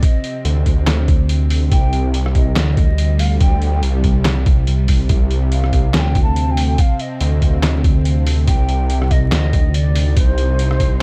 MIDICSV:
0, 0, Header, 1, 5, 480
1, 0, Start_track
1, 0, Key_signature, -3, "minor"
1, 0, Tempo, 422535
1, 30, Time_signature, 4, 2, 24, 8
1, 12522, End_track
2, 0, Start_track
2, 0, Title_t, "Shakuhachi"
2, 0, Program_c, 0, 77
2, 38, Note_on_c, 0, 75, 90
2, 514, Note_off_c, 0, 75, 0
2, 1945, Note_on_c, 0, 79, 127
2, 2394, Note_off_c, 0, 79, 0
2, 2673, Note_on_c, 0, 75, 90
2, 2895, Note_off_c, 0, 75, 0
2, 2911, Note_on_c, 0, 75, 97
2, 2996, Note_on_c, 0, 74, 85
2, 3013, Note_off_c, 0, 75, 0
2, 3080, Note_on_c, 0, 75, 100
2, 3097, Note_off_c, 0, 74, 0
2, 3630, Note_on_c, 0, 77, 95
2, 3647, Note_off_c, 0, 75, 0
2, 3865, Note_off_c, 0, 77, 0
2, 3872, Note_on_c, 0, 79, 101
2, 4317, Note_off_c, 0, 79, 0
2, 6274, Note_on_c, 0, 77, 97
2, 6757, Note_on_c, 0, 81, 100
2, 6774, Note_off_c, 0, 77, 0
2, 6802, Note_on_c, 0, 79, 108
2, 6814, Note_off_c, 0, 81, 0
2, 7067, Note_off_c, 0, 79, 0
2, 7074, Note_on_c, 0, 81, 105
2, 7395, Note_on_c, 0, 79, 98
2, 7412, Note_off_c, 0, 81, 0
2, 7718, Note_on_c, 0, 77, 110
2, 7735, Note_off_c, 0, 79, 0
2, 7959, Note_on_c, 0, 75, 94
2, 7976, Note_off_c, 0, 77, 0
2, 8914, Note_off_c, 0, 75, 0
2, 9631, Note_on_c, 0, 79, 127
2, 10350, Note_on_c, 0, 75, 106
2, 10367, Note_off_c, 0, 79, 0
2, 10585, Note_off_c, 0, 75, 0
2, 10592, Note_on_c, 0, 75, 104
2, 11074, Note_on_c, 0, 74, 107
2, 11091, Note_off_c, 0, 75, 0
2, 11554, Note_on_c, 0, 72, 114
2, 11571, Note_off_c, 0, 74, 0
2, 12522, Note_off_c, 0, 72, 0
2, 12522, End_track
3, 0, Start_track
3, 0, Title_t, "Synth drone"
3, 0, Program_c, 1, 95
3, 0, Note_on_c, 1, 48, 79
3, 0, Note_on_c, 1, 60, 77
3, 1950, Note_on_c, 1, 55, 79
3, 1976, Note_off_c, 1, 60, 0
3, 5789, Note_on_c, 1, 60, 77
3, 5817, Note_off_c, 1, 55, 0
3, 9635, Note_on_c, 1, 63, 81
3, 9656, Note_off_c, 1, 60, 0
3, 12522, Note_off_c, 1, 48, 0
3, 12522, Note_off_c, 1, 63, 0
3, 12522, End_track
4, 0, Start_track
4, 0, Title_t, "Detuned saw bass"
4, 0, Program_c, 2, 39
4, 509, Note_on_c, 2, 38, 99
4, 1932, Note_off_c, 2, 38, 0
4, 1950, Note_on_c, 2, 36, 93
4, 2893, Note_off_c, 2, 36, 0
4, 2909, Note_on_c, 2, 38, 101
4, 3852, Note_off_c, 2, 38, 0
4, 3870, Note_on_c, 2, 38, 96
4, 4333, Note_off_c, 2, 38, 0
4, 4351, Note_on_c, 2, 36, 96
4, 5293, Note_off_c, 2, 36, 0
4, 5310, Note_on_c, 2, 36, 93
4, 5773, Note_off_c, 2, 36, 0
4, 5789, Note_on_c, 2, 36, 94
4, 6733, Note_off_c, 2, 36, 0
4, 6750, Note_on_c, 2, 38, 94
4, 7693, Note_off_c, 2, 38, 0
4, 8187, Note_on_c, 2, 38, 101
4, 9611, Note_off_c, 2, 38, 0
4, 9628, Note_on_c, 2, 36, 94
4, 10572, Note_off_c, 2, 36, 0
4, 10589, Note_on_c, 2, 38, 97
4, 11532, Note_off_c, 2, 38, 0
4, 11549, Note_on_c, 2, 36, 97
4, 12522, Note_off_c, 2, 36, 0
4, 12522, End_track
5, 0, Start_track
5, 0, Title_t, "Drums"
5, 30, Note_on_c, 9, 36, 125
5, 30, Note_on_c, 9, 42, 84
5, 144, Note_off_c, 9, 36, 0
5, 144, Note_off_c, 9, 42, 0
5, 271, Note_on_c, 9, 42, 56
5, 384, Note_off_c, 9, 42, 0
5, 511, Note_on_c, 9, 42, 81
5, 624, Note_off_c, 9, 42, 0
5, 750, Note_on_c, 9, 36, 66
5, 750, Note_on_c, 9, 42, 55
5, 863, Note_off_c, 9, 36, 0
5, 864, Note_off_c, 9, 42, 0
5, 990, Note_on_c, 9, 37, 52
5, 990, Note_on_c, 9, 38, 125
5, 990, Note_on_c, 9, 39, 97
5, 990, Note_on_c, 9, 42, 83
5, 1103, Note_off_c, 9, 37, 0
5, 1103, Note_off_c, 9, 38, 0
5, 1103, Note_off_c, 9, 39, 0
5, 1103, Note_off_c, 9, 42, 0
5, 1229, Note_on_c, 9, 42, 54
5, 1230, Note_on_c, 9, 36, 107
5, 1342, Note_off_c, 9, 42, 0
5, 1344, Note_off_c, 9, 36, 0
5, 1469, Note_on_c, 9, 42, 76
5, 1582, Note_off_c, 9, 42, 0
5, 1709, Note_on_c, 9, 46, 88
5, 1823, Note_off_c, 9, 46, 0
5, 1949, Note_on_c, 9, 42, 78
5, 1950, Note_on_c, 9, 36, 127
5, 2063, Note_off_c, 9, 42, 0
5, 2064, Note_off_c, 9, 36, 0
5, 2190, Note_on_c, 9, 42, 53
5, 2303, Note_off_c, 9, 42, 0
5, 2430, Note_on_c, 9, 42, 76
5, 2544, Note_off_c, 9, 42, 0
5, 2566, Note_on_c, 9, 37, 65
5, 2669, Note_on_c, 9, 42, 52
5, 2670, Note_on_c, 9, 36, 68
5, 2680, Note_off_c, 9, 37, 0
5, 2783, Note_off_c, 9, 36, 0
5, 2783, Note_off_c, 9, 42, 0
5, 2910, Note_on_c, 9, 38, 124
5, 2910, Note_on_c, 9, 39, 93
5, 2910, Note_on_c, 9, 42, 81
5, 3024, Note_off_c, 9, 38, 0
5, 3024, Note_off_c, 9, 39, 0
5, 3024, Note_off_c, 9, 42, 0
5, 3149, Note_on_c, 9, 42, 50
5, 3150, Note_on_c, 9, 36, 110
5, 3262, Note_off_c, 9, 42, 0
5, 3264, Note_off_c, 9, 36, 0
5, 3389, Note_on_c, 9, 42, 74
5, 3502, Note_off_c, 9, 42, 0
5, 3628, Note_on_c, 9, 46, 89
5, 3741, Note_off_c, 9, 46, 0
5, 3869, Note_on_c, 9, 42, 77
5, 3870, Note_on_c, 9, 36, 126
5, 3982, Note_off_c, 9, 42, 0
5, 3984, Note_off_c, 9, 36, 0
5, 4109, Note_on_c, 9, 42, 51
5, 4222, Note_off_c, 9, 42, 0
5, 4348, Note_on_c, 9, 42, 71
5, 4462, Note_off_c, 9, 42, 0
5, 4586, Note_on_c, 9, 42, 51
5, 4590, Note_on_c, 9, 36, 64
5, 4700, Note_off_c, 9, 42, 0
5, 4703, Note_off_c, 9, 36, 0
5, 4828, Note_on_c, 9, 37, 56
5, 4828, Note_on_c, 9, 38, 124
5, 4828, Note_on_c, 9, 39, 90
5, 4828, Note_on_c, 9, 42, 79
5, 4942, Note_off_c, 9, 37, 0
5, 4942, Note_off_c, 9, 38, 0
5, 4942, Note_off_c, 9, 39, 0
5, 4942, Note_off_c, 9, 42, 0
5, 5068, Note_on_c, 9, 42, 49
5, 5070, Note_on_c, 9, 36, 109
5, 5181, Note_off_c, 9, 42, 0
5, 5183, Note_off_c, 9, 36, 0
5, 5308, Note_on_c, 9, 42, 72
5, 5421, Note_off_c, 9, 42, 0
5, 5546, Note_on_c, 9, 46, 88
5, 5549, Note_on_c, 9, 36, 65
5, 5659, Note_off_c, 9, 46, 0
5, 5663, Note_off_c, 9, 36, 0
5, 5786, Note_on_c, 9, 42, 76
5, 5790, Note_on_c, 9, 36, 123
5, 5900, Note_off_c, 9, 42, 0
5, 5903, Note_off_c, 9, 36, 0
5, 6028, Note_on_c, 9, 42, 53
5, 6141, Note_off_c, 9, 42, 0
5, 6268, Note_on_c, 9, 42, 74
5, 6381, Note_off_c, 9, 42, 0
5, 6404, Note_on_c, 9, 37, 62
5, 6507, Note_on_c, 9, 42, 52
5, 6509, Note_on_c, 9, 36, 65
5, 6517, Note_off_c, 9, 37, 0
5, 6621, Note_off_c, 9, 42, 0
5, 6623, Note_off_c, 9, 36, 0
5, 6748, Note_on_c, 9, 38, 124
5, 6748, Note_on_c, 9, 39, 86
5, 6748, Note_on_c, 9, 42, 79
5, 6861, Note_off_c, 9, 38, 0
5, 6861, Note_off_c, 9, 39, 0
5, 6861, Note_off_c, 9, 42, 0
5, 6987, Note_on_c, 9, 42, 50
5, 6989, Note_on_c, 9, 36, 104
5, 7101, Note_off_c, 9, 42, 0
5, 7103, Note_off_c, 9, 36, 0
5, 7228, Note_on_c, 9, 42, 74
5, 7341, Note_off_c, 9, 42, 0
5, 7466, Note_on_c, 9, 46, 91
5, 7580, Note_off_c, 9, 46, 0
5, 7705, Note_on_c, 9, 42, 79
5, 7709, Note_on_c, 9, 36, 117
5, 7819, Note_off_c, 9, 42, 0
5, 7822, Note_off_c, 9, 36, 0
5, 7946, Note_on_c, 9, 42, 54
5, 8060, Note_off_c, 9, 42, 0
5, 8185, Note_on_c, 9, 42, 78
5, 8299, Note_off_c, 9, 42, 0
5, 8428, Note_on_c, 9, 42, 54
5, 8429, Note_on_c, 9, 36, 62
5, 8541, Note_off_c, 9, 42, 0
5, 8542, Note_off_c, 9, 36, 0
5, 8669, Note_on_c, 9, 37, 54
5, 8669, Note_on_c, 9, 38, 115
5, 8669, Note_on_c, 9, 39, 87
5, 8669, Note_on_c, 9, 42, 80
5, 8782, Note_off_c, 9, 37, 0
5, 8782, Note_off_c, 9, 38, 0
5, 8782, Note_off_c, 9, 39, 0
5, 8782, Note_off_c, 9, 42, 0
5, 8909, Note_on_c, 9, 36, 102
5, 8909, Note_on_c, 9, 42, 52
5, 9022, Note_off_c, 9, 36, 0
5, 9023, Note_off_c, 9, 42, 0
5, 9148, Note_on_c, 9, 42, 79
5, 9262, Note_off_c, 9, 42, 0
5, 9389, Note_on_c, 9, 46, 94
5, 9503, Note_off_c, 9, 46, 0
5, 9627, Note_on_c, 9, 42, 84
5, 9629, Note_on_c, 9, 36, 114
5, 9741, Note_off_c, 9, 42, 0
5, 9742, Note_off_c, 9, 36, 0
5, 9867, Note_on_c, 9, 42, 55
5, 9981, Note_off_c, 9, 42, 0
5, 10107, Note_on_c, 9, 42, 79
5, 10221, Note_off_c, 9, 42, 0
5, 10243, Note_on_c, 9, 37, 59
5, 10347, Note_on_c, 9, 42, 54
5, 10349, Note_on_c, 9, 36, 59
5, 10357, Note_off_c, 9, 37, 0
5, 10461, Note_off_c, 9, 42, 0
5, 10463, Note_off_c, 9, 36, 0
5, 10587, Note_on_c, 9, 38, 116
5, 10587, Note_on_c, 9, 39, 92
5, 10587, Note_on_c, 9, 42, 85
5, 10700, Note_off_c, 9, 38, 0
5, 10700, Note_off_c, 9, 39, 0
5, 10700, Note_off_c, 9, 42, 0
5, 10828, Note_on_c, 9, 42, 55
5, 10829, Note_on_c, 9, 36, 100
5, 10941, Note_off_c, 9, 42, 0
5, 10943, Note_off_c, 9, 36, 0
5, 11068, Note_on_c, 9, 42, 82
5, 11181, Note_off_c, 9, 42, 0
5, 11309, Note_on_c, 9, 46, 94
5, 11422, Note_off_c, 9, 46, 0
5, 11548, Note_on_c, 9, 42, 86
5, 11549, Note_on_c, 9, 36, 120
5, 11662, Note_off_c, 9, 42, 0
5, 11663, Note_off_c, 9, 36, 0
5, 11789, Note_on_c, 9, 42, 57
5, 11903, Note_off_c, 9, 42, 0
5, 12031, Note_on_c, 9, 42, 83
5, 12145, Note_off_c, 9, 42, 0
5, 12165, Note_on_c, 9, 37, 59
5, 12269, Note_on_c, 9, 36, 63
5, 12269, Note_on_c, 9, 42, 58
5, 12279, Note_off_c, 9, 37, 0
5, 12382, Note_off_c, 9, 42, 0
5, 12383, Note_off_c, 9, 36, 0
5, 12522, End_track
0, 0, End_of_file